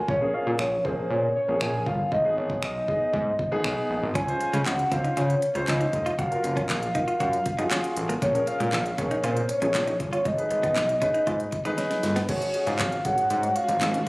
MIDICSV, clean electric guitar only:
0, 0, Header, 1, 3, 480
1, 0, Start_track
1, 0, Tempo, 508475
1, 80, Time_signature, 4, 2, 24, 8
1, 13297, End_track
2, 0, Start_track
2, 0, Title_t, "Clean electric guitar"
2, 0, Program_c, 0, 27
2, 3921, Note_on_c, 0, 61, 81
2, 3995, Note_off_c, 0, 61, 0
2, 4281, Note_on_c, 0, 56, 72
2, 4355, Note_off_c, 0, 56, 0
2, 4641, Note_on_c, 0, 60, 75
2, 4715, Note_off_c, 0, 60, 0
2, 4762, Note_on_c, 0, 63, 81
2, 4836, Note_off_c, 0, 63, 0
2, 4881, Note_on_c, 0, 65, 82
2, 4956, Note_off_c, 0, 65, 0
2, 5241, Note_on_c, 0, 61, 69
2, 5315, Note_off_c, 0, 61, 0
2, 5480, Note_on_c, 0, 63, 65
2, 5555, Note_off_c, 0, 63, 0
2, 5720, Note_on_c, 0, 65, 77
2, 5795, Note_off_c, 0, 65, 0
2, 5841, Note_on_c, 0, 66, 85
2, 5915, Note_off_c, 0, 66, 0
2, 6200, Note_on_c, 0, 61, 77
2, 6275, Note_off_c, 0, 61, 0
2, 6561, Note_on_c, 0, 63, 77
2, 6635, Note_off_c, 0, 63, 0
2, 6680, Note_on_c, 0, 65, 80
2, 6755, Note_off_c, 0, 65, 0
2, 6801, Note_on_c, 0, 66, 81
2, 6875, Note_off_c, 0, 66, 0
2, 7161, Note_on_c, 0, 63, 77
2, 7235, Note_off_c, 0, 63, 0
2, 7281, Note_on_c, 0, 61, 73
2, 7355, Note_off_c, 0, 61, 0
2, 7640, Note_on_c, 0, 58, 81
2, 7714, Note_off_c, 0, 58, 0
2, 7761, Note_on_c, 0, 58, 78
2, 7835, Note_off_c, 0, 58, 0
2, 8121, Note_on_c, 0, 56, 76
2, 8195, Note_off_c, 0, 56, 0
2, 8481, Note_on_c, 0, 61, 78
2, 8555, Note_off_c, 0, 61, 0
2, 8602, Note_on_c, 0, 63, 84
2, 8676, Note_off_c, 0, 63, 0
2, 8722, Note_on_c, 0, 65, 83
2, 8796, Note_off_c, 0, 65, 0
2, 9081, Note_on_c, 0, 61, 70
2, 9155, Note_off_c, 0, 61, 0
2, 9321, Note_on_c, 0, 63, 67
2, 9395, Note_off_c, 0, 63, 0
2, 9560, Note_on_c, 0, 65, 74
2, 9634, Note_off_c, 0, 65, 0
2, 9680, Note_on_c, 0, 56, 83
2, 9755, Note_off_c, 0, 56, 0
2, 10039, Note_on_c, 0, 59, 77
2, 10114, Note_off_c, 0, 59, 0
2, 10400, Note_on_c, 0, 61, 82
2, 10474, Note_off_c, 0, 61, 0
2, 10519, Note_on_c, 0, 63, 81
2, 10594, Note_off_c, 0, 63, 0
2, 10639, Note_on_c, 0, 65, 86
2, 10714, Note_off_c, 0, 65, 0
2, 10999, Note_on_c, 0, 63, 78
2, 11074, Note_off_c, 0, 63, 0
2, 11118, Note_on_c, 0, 61, 74
2, 11193, Note_off_c, 0, 61, 0
2, 11479, Note_on_c, 0, 59, 81
2, 11554, Note_off_c, 0, 59, 0
2, 13297, End_track
3, 0, Start_track
3, 0, Title_t, "Muted clean electric guitar strokes"
3, 4161, Note_on_c, 9, 29, 46
3, 4256, Note_off_c, 9, 29, 0
3, 4400, Note_on_c, 9, 29, 46
3, 4495, Note_off_c, 9, 29, 0
3, 5122, Note_on_c, 9, 29, 42
3, 5217, Note_off_c, 9, 29, 0
3, 5600, Note_on_c, 9, 29, 42
3, 5695, Note_off_c, 9, 29, 0
3, 6081, Note_on_c, 9, 29, 45
3, 6176, Note_off_c, 9, 29, 0
3, 6320, Note_on_c, 9, 29, 47
3, 6415, Note_off_c, 9, 29, 0
3, 7041, Note_on_c, 9, 29, 44
3, 7135, Note_off_c, 9, 29, 0
3, 7400, Note_on_c, 9, 29, 45
3, 7495, Note_off_c, 9, 29, 0
3, 8001, Note_on_c, 9, 29, 45
3, 8095, Note_off_c, 9, 29, 0
3, 8241, Note_on_c, 9, 29, 46
3, 8336, Note_off_c, 9, 29, 0
3, 8961, Note_on_c, 9, 29, 44
3, 9055, Note_off_c, 9, 29, 0
3, 9441, Note_on_c, 9, 29, 46
3, 9535, Note_off_c, 9, 29, 0
3, 9921, Note_on_c, 9, 29, 46
3, 10015, Note_off_c, 9, 29, 0
3, 10160, Note_on_c, 9, 29, 48
3, 10254, Note_off_c, 9, 29, 0
3, 10879, Note_on_c, 9, 29, 42
3, 10974, Note_off_c, 9, 29, 0
3, 11239, Note_on_c, 9, 29, 44
3, 11334, Note_off_c, 9, 29, 0
3, 13297, End_track
0, 0, End_of_file